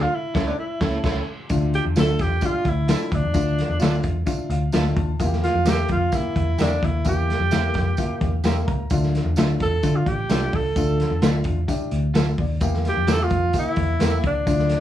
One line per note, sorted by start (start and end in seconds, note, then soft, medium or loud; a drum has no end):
0.02 0.16 F4 medium
0.15 0.49 E4 medium
0.34 0.50 C#2 loud
0.34 0.51 C#3 loud
0.34 0.51 C#4 medium
0.34 0.50 E4 medium
0.34 0.51 E4 loud
0.34 0.51 A4 loud
0.34 0.51 C#5 loud
0.34 kick loud
0.34 snare loud
0.47 0.58 D4 medium
0.59 1.24 E4 medium
0.80 0.96 C#2 loud
0.80 0.96 C#4 loud
0.80 0.96 E4 medium
0.80 0.97 E4 medium
0.80 0.97 A4 medium
0.80 0.97 A4 loud
0.80 0.97 C#5 loud
0.80 kick loud
0.80 snare loud
1.03 1.20 C#2 loud
1.03 1.19 C#4 medium
1.03 1.20 E4 loud
1.03 1.20 E4 medium
1.03 1.20 A4 medium
1.03 1.20 C#5 medium
1.03 kick loud
1.03 snare loud
1.03 crash medium
1.49 1.77 D2 medium
1.49 2.15 D3 medium
1.49 1.84 D4 medium
1.49 1.84 E4 medium
1.49 1.84 F4 loud
1.49 kick loud
1.49 closed hi-hat medium
1.49 tambourine medium
1.74 1.85 G4 medium
1.74 closed hi-hat medium
1.85 1.94 E2 medium
1.96 2.14 D2 medium
1.96 2.30 D4 medium
1.96 2.30 E4 medium
1.96 2.06 F4 medium
1.96 2.30 F4 medium
1.96 2.06 A4 medium
1.96 2.23 A4 medium
1.96 2.07 E5 medium
1.96 snare loud
1.96 closed hi-hat medium
1.96 tambourine medium
2.19 2.37 E2 medium
2.19 2.47 G4 medium
2.19 kick medium
2.19 snare soft
2.19 closed hi-hat medium
2.41 2.76 D4 medium
2.41 2.76 E4 medium
2.41 2.47 F4 medium
2.41 kick medium
2.41 closed hi-hat medium
2.41 tambourine medium
2.46 2.70 F4 medium
2.46 2.79 G4 medium
2.54 muted picked electric bass stroke soft
2.65 2.92 D2 medium
2.65 kick medium
2.65 closed hi-hat medium
2.69 3.17 E4 medium
2.87 3.22 D4 medium
2.87 3.22 E4 medium
2.87 3.22 F4 medium
2.87 2.98 F4 medium
2.87 2.99 A4 medium
2.87 2.99 E5 medium
2.87 snare loud
2.87 closed hi-hat medium
2.87 tambourine medium
3.12 3.21 D2 medium
3.12 4.06 D4 medium
3.12 kick loud
3.12 closed hi-hat medium
3.24 3.33 E2 medium
3.33 3.62 D2 medium
3.33 3.99 D3 medium
3.33 3.68 D4 medium
3.33 3.68 E4 medium
3.33 3.68 F4 medium
3.33 kick loud
3.33 closed hi-hat medium
3.33 tambourine medium
3.58 snare soft
3.58 closed hi-hat medium
3.70 3.78 E2 medium
3.79 3.99 D2 medium
3.79 4.14 D4 medium
3.79 4.14 E4 medium
3.79 4.14 F4 medium
3.79 3.91 F4 medium
3.79 3.91 A4 medium
3.79 3.92 E5 medium
3.79 snare loud
3.79 closed hi-hat medium
3.79 tambourine loud
4.03 4.22 E2 medium
4.03 kick medium
4.03 closed hi-hat medium
4.26 4.61 D4 medium
4.26 4.61 E4 medium
4.26 4.61 F4 medium
4.26 kick medium
4.26 closed hi-hat medium
4.26 tambourine medium
4.39 muted picked electric bass stroke soft
4.50 4.68 D2 loud
4.50 4.71 F5 medium
4.50 closed hi-hat medium
4.72 4.91 D2 medium
4.72 5.07 D4 medium
4.72 5.07 E4 medium
4.72 5.07 F4 loud
4.72 4.83 F4 medium
4.72 4.84 A4 medium
4.72 4.84 E5 medium
4.72 4.94 A5 medium
4.72 snare loud
4.72 closed hi-hat medium
4.72 tambourine medium
4.96 5.15 D#2 medium
4.96 5.18 A5 medium
4.96 kick loud
4.96 closed hi-hat medium
5.19 5.47 E2 loud
5.19 5.86 E3 medium
5.19 5.54 A#3 medium
5.19 5.54 E4 medium
5.19 5.26 F4 medium
5.19 kick loud
5.19 closed hi-hat medium
5.19 tambourine medium
5.26 5.57 G4 loud
5.33 snare soft
5.43 5.71 F4 loud
5.43 snare soft
5.43 closed hi-hat medium
5.54 5.63 F2 medium
5.65 5.83 E2 medium
5.65 6.00 A#3 medium
5.65 6.00 E4 medium
5.65 5.76 G4 medium
5.65 6.00 G4 medium
5.65 5.76 A#4 medium
5.65 5.76 E5 medium
5.65 snare loud
5.65 closed hi-hat medium
5.65 tambourine loud
5.69 5.91 G4 loud
5.88 6.07 F2 medium
5.88 6.17 F4 medium
5.88 kick medium
5.88 closed hi-hat medium
6.12 6.47 A#3 medium
6.12 6.47 E4 medium
6.12 6.63 E4 loud
6.12 6.47 G4 medium
6.12 kick medium
6.12 closed hi-hat medium
6.12 tambourine medium
6.24 muted picked electric bass stroke soft
6.36 6.54 E2 medium
6.36 kick medium
6.36 closed hi-hat medium
6.58 6.76 E2 medium
6.58 6.93 A#3 medium
6.58 6.86 D4 medium
6.58 6.93 E4 medium
6.58 6.68 G4 medium
6.58 6.69 A#4 medium
6.58 6.94 A#4 medium
6.58 6.69 E5 medium
6.58 snare loud
6.58 closed hi-hat medium
6.58 tambourine medium
6.83 7.00 D#2 medium
6.83 7.06 E4 medium
6.83 kick loud
6.83 closed hi-hat medium
7.04 7.33 E2 loud
7.04 7.71 E3 medium
7.04 7.39 A#3 medium
7.04 7.39 E4 medium
7.04 7.39 G4 medium
7.04 kick loud
7.04 closed hi-hat medium
7.04 tambourine medium
7.08 8.42 G4 loud
7.30 snare soft
7.30 closed hi-hat medium
7.40 7.49 F2 medium
7.51 7.70 E2 medium
7.51 7.85 A#3 medium
7.51 7.86 E4 medium
7.51 7.61 G4 medium
7.51 7.86 A#4 medium
7.51 7.62 A#4 loud
7.51 7.62 E5 medium
7.51 snare loud
7.51 closed hi-hat medium
7.51 tambourine loud
7.74 7.93 F2 medium
7.74 kick medium
7.74 snare soft
7.74 closed hi-hat medium
7.97 8.32 A#3 medium
7.97 8.32 E4 medium
7.97 8.04 F4 medium
7.97 kick medium
7.97 closed hi-hat medium
7.97 tambourine medium
8.04 8.35 G4 medium
8.10 muted picked electric bass stroke soft
8.21 8.39 E2 medium
8.21 kick medium
8.21 closed hi-hat medium
8.44 8.62 E2 medium
8.44 8.79 A#3 medium
8.44 8.79 E4 medium
8.44 8.54 G4 medium
8.44 8.79 G4 medium
8.44 8.54 A#4 medium
8.44 8.54 E5 medium
8.44 8.66 G5 medium
8.44 snare loud
8.44 closed hi-hat medium
8.44 tambourine medium
8.67 8.85 C#2 medium
8.67 8.89 A#5 medium
8.67 kick loud
8.67 closed hi-hat medium
8.90 9.18 D2 loud
8.90 9.57 D3 medium
8.90 9.25 D4 medium
8.90 9.25 E4 medium
8.90 9.25 F4 medium
8.90 kick loud
8.90 closed hi-hat medium
8.90 tambourine medium
9.03 snare soft
9.15 snare soft
9.15 closed hi-hat medium
9.25 9.34 E2 medium
9.36 9.55 D2 medium
9.36 9.72 D4 medium
9.36 9.71 E4 medium
9.36 9.47 F4 medium
9.36 9.72 F4 medium
9.36 9.47 A4 medium
9.36 9.48 E5 loud
9.36 snare loud
9.36 closed hi-hat medium
9.36 tambourine medium
9.60 9.78 E2 medium
9.60 9.98 A4 loud
9.60 kick medium
9.60 closed hi-hat medium
9.83 10.02 D3 loud
9.83 10.17 D4 medium
9.83 10.17 E4 medium
9.83 10.18 F4 medium
9.83 kick medium
9.83 closed hi-hat medium
9.83 tambourine medium
9.96 10.10 F4 medium
10.06 10.24 A1 medium
10.06 10.57 G4 medium
10.06 kick medium
10.06 closed hi-hat medium
10.29 10.48 C2 medium
10.29 10.64 D4 medium
10.29 10.64 E4 medium
10.29 10.40 F4 medium
10.29 10.64 F4 medium
10.29 10.40 A4 medium
10.29 10.40 E5 medium
10.29 snare loud
10.29 closed hi-hat medium
10.29 tambourine medium
10.53 10.71 C#2 medium
10.53 11.24 A4 medium
10.53 kick loud
10.53 open hi-hat medium
10.76 11.03 D2 loud
10.76 11.42 D3 medium
10.76 11.10 D4 medium
10.76 11.11 E4 medium
10.76 11.11 F4 medium
10.76 kick loud
10.76 closed hi-hat medium
10.76 tambourine medium
11.00 snare soft
11.00 closed hi-hat medium
11.10 11.20 E2 medium
11.22 11.40 D2 medium
11.22 11.57 D4 medium
11.22 11.57 E4 medium
11.22 11.32 F4 medium
11.22 11.57 F4 medium
11.22 11.33 A4 medium
11.22 11.33 E5 loud
11.22 snare loud
11.22 closed hi-hat medium
11.22 tambourine loud
11.44 11.63 E2 medium
11.44 kick medium
11.44 closed hi-hat medium
11.68 12.03 D4 medium
11.68 12.03 E4 medium
11.68 12.03 G4 medium
11.68 kick medium
11.68 closed hi-hat medium
11.68 tambourine medium
11.81 muted picked electric bass stroke soft
11.91 12.10 D2 medium
11.91 closed hi-hat medium
12.14 12.33 D2 medium
12.14 12.25 F4 medium
12.14 12.38 F4 medium
12.14 12.25 A4 medium
12.14 12.38 A4 medium
12.14 12.25 E5 medium
12.14 snare loud
12.14 closed hi-hat medium
12.14 tambourine medium
12.38 12.56 D#2 medium
12.38 12.83 D5 medium
12.38 kick loud
12.38 open hi-hat medium
12.60 12.89 E2 loud
12.60 13.27 E3 medium
12.60 12.96 A#3 medium
12.60 12.96 E4 medium
12.60 12.96 G4 loud
12.60 kick loud
12.60 closed hi-hat medium
12.60 tambourine medium
12.74 snare soft
12.85 13.14 G4 loud
12.85 snare soft
12.85 closed hi-hat medium
12.97 13.06 F2 medium
13.07 13.26 E2 medium
13.07 13.42 A#3 medium
13.07 13.43 E4 medium
13.07 13.14 F4 medium
13.07 13.18 G4 medium
13.07 13.18 A#4 medium
13.07 13.18 E5 medium
13.07 snare loud
13.07 closed hi-hat medium
13.07 tambourine loud
13.13 13.46 G4 medium
13.13 13.25 A4 loud
13.23 13.56 F4 loud
13.30 13.49 F2 medium
13.30 kick medium
13.30 closed hi-hat medium
13.53 13.89 A#3 medium
13.53 13.89 E4 medium
13.53 13.89 G4 medium
13.53 kick medium
13.53 closed hi-hat medium
13.53 tambourine medium
13.59 14.22 E4 loud
13.66 muted picked electric bass stroke soft
13.76 13.95 E2 medium
13.76 kick medium
13.76 closed hi-hat medium
13.99 14.18 E2 medium
13.99 14.35 A#3 medium
13.99 14.35 E4 medium
13.99 14.11 G4 medium
13.99 14.35 G4 medium
13.99 14.11 A#4 medium
13.99 14.11 E5 medium
13.99 snare loud
13.99 closed hi-hat medium
13.99 tambourine medium
14.24 14.42 C#2 medium
14.24 14.80 D4 medium
14.24 kick loud
14.24 closed hi-hat medium
14.46 14.74 D2 loud
14.46 14.80 D3 medium
14.46 14.80 D4 medium
14.46 14.80 E4 medium
14.46 14.80 F4 medium
14.46 kick loud
14.46 closed hi-hat medium
14.46 tambourine medium
14.59 snare soft
14.69 snare soft
14.69 closed hi-hat medium